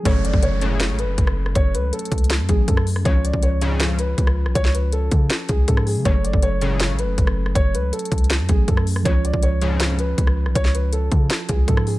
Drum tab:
HH |x-----x-----x-----x-----x-----x-----x-----------|x-----x-----x-x-x-x-x-x-x-----x-----x-----o-----|x-----x-----x-----x-----x-----x-----x-----------|x-----x-----x-----x-----x-----x-----x-----o-----|
SD |------------------------o--------------r-----r--|------------------------o--------------r-----r--|------------------------o--------------r-----r--|---o--------------------o--------------r--------|
BD |o--------o--------------------------o-----------|o-----------------o-----------o-----o-----------|o--------o--------------------------o-----------|o-----------------o-----------o-----o-----------|

HH |x-----x-----x-----x-----x-----x-----x-----------|x-----x-----x-x-x-x-x-x-x-----x-----x-----o-----|x-----x-----x-----x-----x-----x-----x-----------|x-----x-----x-----x-----x-----x-----x-----o-----|
SD |------------------------o--------------r-----r--|------------------------o--------------r-----r--|------------------------o--------------r-----r--|---o--------------------o--------------r--------|
BD |o--------o--------------------------o-----------|o-----------------o-----------o-----o-----------|o--------o--------------------------o-----------|o-----------------o-----------o-----o-----------|